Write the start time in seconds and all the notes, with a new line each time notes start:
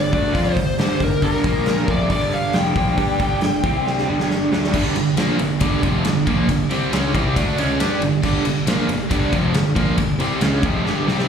Already playing: G1 D5
0.12 D2 D3 A3 D4, kick, open hi-hat
0.34 F2 F3 C4 F4, kick, open hi-hat
0.52 G1 C5
0.57 G2 D3, kick, open hi-hat
0.78 G1 G2 D3 G3 C5, snare, open hi-hat
1.00 G1 G2 D3 A#4, kick, open hi-hat
1.22 G1 G2 D3 G3 A#4, kick, open hi-hat
1.34 snare
1.44 A#1 A#2 F3 A#3, kick, open hi-hat
1.66 snare, open hi-hat
1.88 F1 F2 C3 F3 D5, kick, open hi-hat
2.09 G1 G2 D3 G3 D5, kick, open hi-hat
2.32 F5, open hi-hat
2.53 F1 F2 C3 F3 G5, snare, open hi-hat
2.75 A#1 A#2 F3 A#3, kick, open hi-hat
2.97 G2 G3 D4 G4, kick, open hi-hat
3.19 G1 G2 D3 G3, kick, open hi-hat
3.41 G1 G2 D3, snare, open hi-hat
3.63 C2 C3 G3 C4, kick, open hi-hat
3.87 snare
3.98 snare
4.08 G1 G2 D3 G3
4.20 snare
4.31 snare
4.52 D2 D3 A3 D4, snare
4.64 snare
4.73 G1 G2 D3 G3, kick, crash
4.95 G1 G2 D3, ride
5.17 A#1 A#2 F3 A#3, snare, ride
5.39 G1 G2 D3, ride
5.60 G1 G2 D3 G3, kick, ride
5.82 F1 F2 C3 F3, kick, ride
6.05 G1 G2 D3, snare, ride
6.27 A#1 A#2 F3 A#3, kick, ride
6.48 G1 G2 D3, kick, ride
6.71 C2 C3 G3 C4, ride
6.92 C#2 C#3 G#3 C#4, snare, ride
7.14 C2 C3 G3 C4, kick, ride
7.35 D2 D3 A3 D4, kick, ride
7.58 C#2 C#3 G#3 C#4, ride
7.80 G2 G3 D4 G4, snare, ride
8.01 G1 G2 D3, ride
8.23 G1 G2 D3 G3, kick, crash
8.45 G1 G2 D3, ride
8.67 A#1 A#2 F3 A#3, snare, ride
8.88 G1 G2 D3, ride
9.11 G1 G2 D3 G3, kick, ride
9.32 F1 F2 C3 F3, kick, ride
9.54 G1 G2 D3, snare, ride
9.76 A#1 A#2 F3 A#3, kick, ride
9.98 G1 G2 D3, kick, ride
10.19 C2 C3 G3 C4, ride
10.41 C#2 C#3 G#3 C#4, snare, ride
10.63 F1 F2 C3 F3, kick, ride
10.85 G1 G2 D3 G3, snare
11.07 C2 C3 G3 C4, snare
11.19 snare